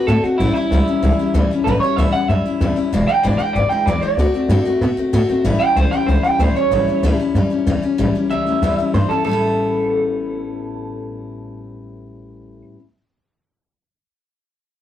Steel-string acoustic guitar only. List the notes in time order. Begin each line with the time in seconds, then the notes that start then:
0.08 D3 A3 C4 F#4
0.24 A3 C4 F#4
0.40 A2 E3 G3 C#4 E4
0.55 G3 C#4 E4
0.72 A2 E3 G3 C#4 E4
0.88 G3 C#4 E4
1.03 E3 G3 C#4 E4
1.19 G3 C#4 E4
1.34 A2 E3 G3 C#4 E4
1.51 G3 C#4 E4
1.67 A2 E3 G3 C#4 E4
1.83 G3 C#4 E4
1.98 A2 E3 G3 C#4 E4
2.14 G3 C#4 E4
2.30 E3 G3 C#4 E4
2.45 G3 C#4 E4
2.61 A2 E3 G3 C#4 E4
2.76 G3 C#4 E4
2.93 E2 B2 E3 G#3 D4 E4
3.09 E3 G#3 D4 E4
3.23 E2 B2 E3 G#3 D4 E4
3.39 E3 G#3 D4 E4
3.55 E3 G#3 D4 E4
3.70 E3 G#3 D4 E4
3.87 E2 B2 E3 G#3 D4 E4
4.02 E3 G#3 D4 E4
4.19 D3 A3 C4 F#4
4.34 A3 C4 F#4
4.50 D3 A3 C4 F#4
4.65 A3 C4 F#4
4.82 D3 A3 C4 F#4
4.97 A3 C4 F#4
5.13 D3 A3 C4 F#4
5.29 A3 C4 F#4
5.45 A2 E3 G3 C#4 E4
5.60 G3 C#4 E4
5.77 A2 E3 G3 C#4 E4
5.93 G3 C#4 E4
6.08 E3 G3 C#4 E4
6.24 G3 C#4 E4
6.40 A2 E3 G3 C#4 E4
6.56 G3 C#4 E4
6.71 A2 E3 G3 C#4 E4
6.88 G3 C#4 E4
7.03 A2 E3 G3 C#4 E4
7.19 G3 C#4 E4
7.35 E3 G3 C#4 E4
7.50 G3 C#4 E4
7.67 A2 E3 G3 C#4 E4
7.82 G3 C#4 E4
7.98 A2 E3 G3 C#4 E4
8.15 G3 C#4 E4
8.30 E3 G3 C#4 E4
8.46 G3 C#4 E4
8.63 A2 E3 G3 C#4 E4
8.78 G3 C#4 E4
8.94 E3 G3 C#4 E4
9.11 G3 C#4 E4
9.24 A2 G3
9.29 B3 C#4 E4